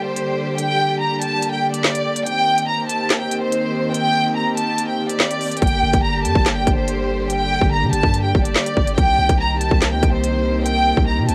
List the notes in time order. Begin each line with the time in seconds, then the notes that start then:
Already playing: D3 G3 A#3 G4
0.06 C5
0.17 closed hi-hat
0.59 G5, closed hi-hat
1.01 A#5
1.22 A5, closed hi-hat
1.42 closed hi-hat
1.53 G5
1.74 D5, closed hi-hat
1.84 snare, clap
1.95 closed hi-hat
2.16 closed hi-hat
2.26 D#3 C4 G4 G5, closed hi-hat
2.58 closed hi-hat
2.69 A#5
2.89 A5, closed hi-hat
3.10 snare, clap, closed hi-hat
3.21 G5
3.31 closed hi-hat
3.42 C5
3.52 closed hi-hat
3.93 G5, closed hi-hat
4.36 A#5
4.57 A5, closed hi-hat
4.78 closed hi-hat
4.88 G5
5.10 D5, closed hi-hat
5.20 snare, clap
5.31 closed hi-hat
5.41 open hi-hat
5.52 closed hi-hat
5.57 closed hi-hat
5.62 G1 D3 G3 G5, kick, closed hi-hat
5.67 closed hi-hat
5.83 G1
5.93 G1, kick, closed hi-hat
6.04 A#5
6.25 G2 A5, closed hi-hat
6.35 G1, kick
6.46 snare, clap, closed hi-hat
6.56 G5
6.67 G1, kick, closed hi-hat
6.77 C5
6.88 closed hi-hat
7.30 G5, closed hi-hat
7.61 G1, kick
7.72 A#5
7.82 D3
7.93 G1 A5, closed hi-hat
8.03 G2, kick
8.14 closed hi-hat
8.24 G5
8.35 G1, kick
8.45 D5, closed hi-hat
8.56 snare, clap
8.66 closed hi-hat
8.77 G1, kick
8.87 closed hi-hat
8.98 C2 D#3 A#3 C4 G5, kick, closed hi-hat
9.19 C2
9.29 C2, kick, closed hi-hat
9.40 A#5
9.60 A5, closed hi-hat
9.71 C2, kick
9.82 snare, clap, closed hi-hat
9.92 D2 G5
10.03 C2, kick, closed hi-hat
10.13 C5
10.24 closed hi-hat
10.65 G5, closed hi-hat
10.97 C2, kick
11.08 A#5
11.18 C3
11.29 C2 A5, closed hi-hat